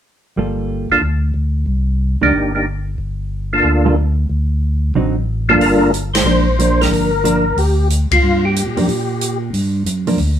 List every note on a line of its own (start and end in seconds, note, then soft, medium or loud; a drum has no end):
0.36 0.87 G1 medium
0.36 0.87 G3 soft
0.36 0.87 A#3 soft
0.36 0.87 F4 soft
0.36 0.88 A4 soft
0.90 0.96 G1 soft
0.90 1.02 A#3 medium
0.90 1.02 D4 soft
0.90 1.02 F4 soft
0.90 1.02 A4 medium
1.01 1.32 D2 medium
1.34 1.65 D2 medium
1.66 2.17 C2 medium
2.21 2.32 C#2 medium
2.21 2.32 D#3 soft
2.21 2.32 A#3 soft
2.21 2.53 A#3 medium
2.21 2.33 D4 medium
2.21 2.53 D4 soft
2.21 2.53 D#4 soft
2.21 2.53 G4 medium
2.33 2.95 G1 medium
2.55 2.65 A#3 soft
2.55 2.65 D4 soft
2.55 2.66 D#4 soft
2.55 2.66 G4 medium
2.98 3.61 G1 medium
3.53 3.95 A#3 medium
3.53 3.95 D4 medium
3.53 3.95 F4 medium
3.53 3.95 A4 medium
3.63 4.26 D2 medium
3.85 3.96 G3 soft
3.85 3.96 A#3 soft
3.85 3.96 F4 medium
3.85 3.97 A4 soft
4.29 4.92 D2 medium
4.94 5.57 A1 medium
4.94 5.14 D3 medium
4.94 5.15 F#3 soft
4.94 5.15 C4 medium
4.94 5.15 D#4 medium
5.48 5.91 G2 medium
5.48 5.60 F3 soft
5.48 5.91 A#3 soft
5.48 5.60 A#3 soft
5.48 5.91 D4 soft
5.48 5.60 D4 medium
5.48 5.91 F4 soft
5.48 5.91 A4 medium
5.59 6.22 G1 medium
5.59 5.91 A#4 medium
5.59 open hi-hat soft
5.94 closed hi-hat soft
6.14 6.81 C5 medium
6.14 snare medium
6.14 ride medium
6.24 6.87 A#1 medium
6.24 6.45 F3 soft
6.24 6.45 A#3 soft
6.24 6.45 D4 medium
6.59 7.08 F3 medium
6.59 7.09 A#3 medium
6.59 7.09 D4 medium
6.59 closed hi-hat soft
6.81 7.60 A#4 loud
6.81 snare soft
6.81 open hi-hat soft
6.91 7.53 G1 medium
6.91 open hi-hat soft
7.24 7.43 F3 medium
7.24 7.43 A#3 medium
7.24 7.43 D4 medium
7.24 closed hi-hat soft
7.56 8.06 D2 medium
7.56 7.88 G4 medium
7.56 open hi-hat soft
7.90 closed hi-hat soft
8.11 8.17 D2 soft
8.11 8.45 F4 medium
8.11 kick medium
8.11 ride medium
8.23 8.63 G2 medium
8.45 9.38 G4 medium
8.56 closed hi-hat soft
8.66 8.76 A#2 soft
8.77 8.87 F#2 medium
8.77 8.87 F3 soft
8.77 8.87 A#3 soft
8.77 8.88 D4 soft
8.77 open hi-hat soft
8.89 9.50 A#2 medium
8.89 open hi-hat soft
9.21 closed hi-hat soft
9.53 9.83 G2 medium
9.53 open hi-hat soft
9.86 10.16 F#2 medium
9.86 closed hi-hat soft
10.07 10.17 F3 soft
10.07 10.18 A#3 medium
10.07 10.18 D4 soft
10.07 open hi-hat soft
10.18 10.39 D2 medium
10.18 open hi-hat soft